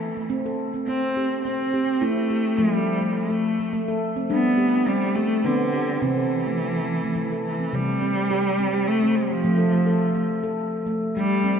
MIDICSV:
0, 0, Header, 1, 3, 480
1, 0, Start_track
1, 0, Key_signature, 0, "major"
1, 0, Tempo, 571973
1, 722, Time_signature, 3, 2, 24, 8
1, 9732, End_track
2, 0, Start_track
2, 0, Title_t, "Handpan"
2, 0, Program_c, 0, 114
2, 0, Note_on_c, 0, 69, 56
2, 130, Note_off_c, 0, 69, 0
2, 143, Note_on_c, 0, 57, 54
2, 250, Note_on_c, 0, 60, 78
2, 374, Note_off_c, 0, 57, 0
2, 384, Note_on_c, 0, 69, 58
2, 608, Note_off_c, 0, 60, 0
2, 615, Note_off_c, 0, 69, 0
2, 622, Note_on_c, 0, 60, 55
2, 725, Note_off_c, 0, 60, 0
2, 734, Note_on_c, 0, 60, 77
2, 979, Note_on_c, 0, 67, 59
2, 1210, Note_off_c, 0, 60, 0
2, 1211, Note_off_c, 0, 67, 0
2, 1220, Note_on_c, 0, 60, 69
2, 1451, Note_off_c, 0, 60, 0
2, 1458, Note_on_c, 0, 67, 64
2, 1690, Note_off_c, 0, 67, 0
2, 1691, Note_on_c, 0, 64, 78
2, 1700, Note_on_c, 0, 60, 59
2, 1932, Note_off_c, 0, 60, 0
2, 1933, Note_on_c, 0, 67, 62
2, 2048, Note_off_c, 0, 64, 0
2, 2168, Note_off_c, 0, 67, 0
2, 2168, Note_on_c, 0, 53, 75
2, 2178, Note_on_c, 0, 57, 81
2, 2294, Note_off_c, 0, 57, 0
2, 2294, Note_on_c, 0, 69, 54
2, 2528, Note_on_c, 0, 57, 53
2, 2530, Note_off_c, 0, 69, 0
2, 2767, Note_off_c, 0, 57, 0
2, 2773, Note_on_c, 0, 69, 55
2, 2888, Note_off_c, 0, 53, 0
2, 3010, Note_off_c, 0, 69, 0
2, 3016, Note_on_c, 0, 57, 58
2, 3122, Note_off_c, 0, 57, 0
2, 3132, Note_on_c, 0, 57, 81
2, 3257, Note_on_c, 0, 69, 65
2, 3490, Note_off_c, 0, 57, 0
2, 3492, Note_off_c, 0, 69, 0
2, 3494, Note_on_c, 0, 60, 62
2, 3606, Note_on_c, 0, 62, 72
2, 3607, Note_off_c, 0, 60, 0
2, 3610, Note_on_c, 0, 55, 75
2, 3842, Note_on_c, 0, 67, 60
2, 3845, Note_off_c, 0, 62, 0
2, 4083, Note_off_c, 0, 67, 0
2, 4083, Note_on_c, 0, 60, 70
2, 4323, Note_off_c, 0, 60, 0
2, 4330, Note_off_c, 0, 55, 0
2, 4331, Note_on_c, 0, 67, 62
2, 4567, Note_off_c, 0, 67, 0
2, 4568, Note_on_c, 0, 59, 78
2, 4572, Note_on_c, 0, 60, 64
2, 4808, Note_off_c, 0, 60, 0
2, 4816, Note_on_c, 0, 67, 58
2, 4927, Note_off_c, 0, 59, 0
2, 5050, Note_off_c, 0, 67, 0
2, 5052, Note_on_c, 0, 48, 76
2, 5056, Note_on_c, 0, 60, 75
2, 5174, Note_off_c, 0, 60, 0
2, 5177, Note_on_c, 0, 69, 59
2, 5413, Note_off_c, 0, 69, 0
2, 5420, Note_on_c, 0, 57, 51
2, 5654, Note_off_c, 0, 57, 0
2, 5663, Note_on_c, 0, 69, 55
2, 5771, Note_off_c, 0, 48, 0
2, 5896, Note_off_c, 0, 69, 0
2, 5906, Note_on_c, 0, 57, 56
2, 6006, Note_on_c, 0, 52, 75
2, 6137, Note_off_c, 0, 57, 0
2, 6144, Note_on_c, 0, 69, 61
2, 6366, Note_off_c, 0, 52, 0
2, 6374, Note_on_c, 0, 60, 55
2, 6376, Note_off_c, 0, 69, 0
2, 6485, Note_on_c, 0, 48, 80
2, 6487, Note_off_c, 0, 60, 0
2, 6730, Note_on_c, 0, 60, 56
2, 6967, Note_off_c, 0, 60, 0
2, 6970, Note_on_c, 0, 67, 75
2, 7206, Note_off_c, 0, 48, 0
2, 7207, Note_off_c, 0, 67, 0
2, 7213, Note_on_c, 0, 60, 60
2, 7331, Note_on_c, 0, 67, 63
2, 7332, Note_off_c, 0, 60, 0
2, 7570, Note_off_c, 0, 67, 0
2, 7576, Note_on_c, 0, 60, 68
2, 7810, Note_on_c, 0, 67, 59
2, 7812, Note_off_c, 0, 60, 0
2, 7921, Note_on_c, 0, 57, 83
2, 7925, Note_off_c, 0, 67, 0
2, 7928, Note_on_c, 0, 53, 83
2, 8041, Note_on_c, 0, 69, 63
2, 8046, Note_off_c, 0, 57, 0
2, 8161, Note_off_c, 0, 69, 0
2, 8162, Note_on_c, 0, 57, 65
2, 8277, Note_on_c, 0, 69, 61
2, 8287, Note_off_c, 0, 57, 0
2, 8518, Note_on_c, 0, 57, 57
2, 8522, Note_off_c, 0, 69, 0
2, 8648, Note_off_c, 0, 53, 0
2, 8757, Note_on_c, 0, 69, 63
2, 8763, Note_off_c, 0, 57, 0
2, 9002, Note_off_c, 0, 69, 0
2, 9119, Note_on_c, 0, 57, 69
2, 9361, Note_off_c, 0, 57, 0
2, 9372, Note_on_c, 0, 55, 89
2, 9600, Note_on_c, 0, 60, 64
2, 9732, Note_off_c, 0, 55, 0
2, 9732, Note_off_c, 0, 60, 0
2, 9732, End_track
3, 0, Start_track
3, 0, Title_t, "Cello"
3, 0, Program_c, 1, 42
3, 0, Note_on_c, 1, 52, 73
3, 242, Note_off_c, 1, 52, 0
3, 733, Note_on_c, 1, 60, 79
3, 1174, Note_off_c, 1, 60, 0
3, 1205, Note_on_c, 1, 60, 82
3, 1683, Note_on_c, 1, 57, 84
3, 1695, Note_off_c, 1, 60, 0
3, 2158, Note_on_c, 1, 55, 76
3, 2171, Note_off_c, 1, 57, 0
3, 2653, Note_on_c, 1, 57, 66
3, 2665, Note_off_c, 1, 55, 0
3, 3368, Note_off_c, 1, 57, 0
3, 3630, Note_on_c, 1, 59, 89
3, 4097, Note_on_c, 1, 55, 81
3, 4110, Note_off_c, 1, 59, 0
3, 4320, Note_on_c, 1, 57, 83
3, 4333, Note_off_c, 1, 55, 0
3, 4575, Note_on_c, 1, 50, 75
3, 4588, Note_off_c, 1, 57, 0
3, 5045, Note_on_c, 1, 52, 73
3, 5057, Note_off_c, 1, 50, 0
3, 6245, Note_off_c, 1, 52, 0
3, 6253, Note_on_c, 1, 52, 67
3, 6499, Note_on_c, 1, 55, 89
3, 6511, Note_off_c, 1, 52, 0
3, 7448, Note_on_c, 1, 57, 94
3, 7461, Note_off_c, 1, 55, 0
3, 7683, Note_on_c, 1, 53, 87
3, 7695, Note_off_c, 1, 57, 0
3, 9123, Note_off_c, 1, 53, 0
3, 9369, Note_on_c, 1, 55, 90
3, 9732, Note_off_c, 1, 55, 0
3, 9732, End_track
0, 0, End_of_file